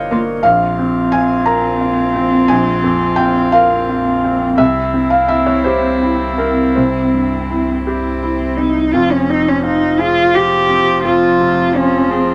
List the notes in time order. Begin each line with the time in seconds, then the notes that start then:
Already playing: G1 G2 G3 A#3 F4 A#4 C5 C#5 D#5
0.11 A#3 F4
0.43 A#1 C4 F4 F5
0.79 C4
1.12 F4 G#5
1.46 A#4 A#5
1.81 F4
2.15 C4
2.48 A#1 G#5
2.84 F2
3.16 F4 G5
3.52 A#4 F5
3.89 F4
4.24 C4
4.58 C2 C4 E4 E5
4.94 C4
5.10 F5
5.28 E4 E5
5.46 C#5
5.64 G4 C5
6.03 E4
6.38 C4 A#4
6.75 C2 C5
7.14 G2
7.50 E4
7.86 C4 G4
8.23 E4
8.57 C4 D#4
8.93 F1 F2 F3 F4
9.12 C#4
9.30 C4 D#4
9.49 C#4
9.63 D#4 F4
9.99 F4 G#4
10.34 F4 G4
10.69 C4
11.04 F2 F4
11.39 C3
11.74 C#4 F4
12.10 C4 G#4